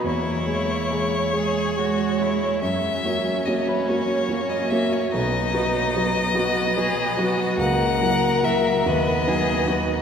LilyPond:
<<
  \new Staff \with { instrumentName = "Violin" } { \time 6/8 \key b \major \tempo 4. = 48 cis''2. | e''4 dis''16 b'16 cis''8. dis''16 e''16 cis''16 | dis''2. | fis''4 e''8 dis''4. | }
  \new Staff \with { instrumentName = "Grand piano" } { \time 6/8 \key b \major e,8 <gis gis' cis''>8 <gis gis' cis''>8 <gis gis' cis''>8 <gis gis' cis''>8 <gis gis' cis''>8 | fis,8 <ais fis' cis''>8 <ais fis' cis''>8 <ais fis' cis''>8 <ais fis' cis''>8 <ais fis' cis''>8 | b,,8 <fis fis' b'>8 <fis fis' b'>8 <fis fis' b'>8 <fis fis' b'>8 <fis fis' b'>8 | cis,8 <fis e' ais'>8 <fis e' ais'>8 dis,8 <fis dis' b'>8 <fis dis' b'>8 | }
  \new Staff \with { instrumentName = "Violin" } { \time 6/8 \key b \major e'4. gis'8 fis'8 e'8 | cis'2. | dis'4. fis'8 gis'8 fis'8 | ais'4. b'8 gis'8 fis'8 | }
  \new Staff \with { instrumentName = "Cello" } { \time 6/8 \key b \major ais4. gis4. | fis4. ais4. | b4. b4. | ais4. b4. | }
>>